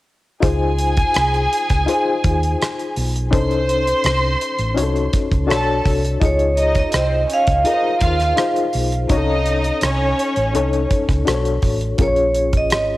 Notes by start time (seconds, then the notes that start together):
0.40 C#2 D#4 F4 G#4 C5 G#5, kick, closed hi-hat
0.79 closed hi-hat
0.97 kick, closed hi-hat
1.14 C2, cross-stick, closed hi-hat
1.34 closed hi-hat
1.53 closed hi-hat
1.70 C#2, kick, closed hi-hat
1.86 D#4 F4 G#4 C5, closed hi-hat
2.24 D#2, kick, closed hi-hat
2.43 closed hi-hat
2.62 cross-stick, closed hi-hat
2.79 closed hi-hat
2.96 B1, open hi-hat
3.16 closed hi-hat
3.31 C2 C#4 D#4 A4 C5 C6, kick, closed hi-hat
3.51 closed hi-hat
3.69 closed hi-hat
3.87 closed hi-hat
4.04 C2, cross-stick, closed hi-hat
4.41 closed hi-hat
4.59 A1, closed hi-hat
4.74 C2 C#4 D#4 F#4 C#5, closed hi-hat
4.83 A4
4.96 closed hi-hat
5.13 kick, closed hi-hat
5.31 C#2, kick, closed hi-hat
5.47 B1 D4 F#4 A4 C#5 A5, closed hi-hat
5.51 cross-stick
5.85 C2, kick, open hi-hat
6.04 closed hi-hat
6.20 C#2 D#4 F4 G#4 D#5, kick, closed hi-hat
6.25 C#5
6.39 closed hi-hat
6.57 D#4 D#5, closed hi-hat
6.75 kick, closed hi-hat
6.80 D#5
6.92 C2 C4 C5, cross-stick, closed hi-hat
6.97 D#5
7.28 C#4 C#5, closed hi-hat
7.34 F5
7.47 C#2, kick, closed hi-hat
7.64 D#4 F4 G#4 A#4 D#5, closed hi-hat
8.01 D#2 F4 F5, kick, closed hi-hat
8.20 cross-stick, closed hi-hat
8.37 D#4 F4 G#4 C5, cross-stick, closed hi-hat
8.56 closed hi-hat
8.73 B1, open hi-hat
8.92 closed hi-hat
9.09 C2 C#4 D#4 F#4 C#5 D#5, kick, closed hi-hat
9.17 A4
9.46 closed hi-hat
9.64 closed hi-hat
9.81 C2 C#4 C#5, cross-stick, closed hi-hat
10.19 closed hi-hat
10.36 A1, closed hi-hat
10.54 C2 C#4 D#4 A4 C#5, closed hi-hat
10.73 closed hi-hat
10.91 kick, closed hi-hat
11.09 C#2, kick, cross-stick, closed hi-hat
11.25 B1 D4 F#4 A4 C5, cross-stick, closed hi-hat
11.35 C#5
11.45 closed hi-hat
11.62 A1, kick, open hi-hat
11.81 closed hi-hat
11.98 A#1 C#4 F4 G#4 A#4, kick, closed hi-hat
12.02 C#5
12.08 C#5
12.16 closed hi-hat
12.35 closed hi-hat
12.53 kick, closed hi-hat
12.57 D#5
12.70 G#1, cross-stick, closed hi-hat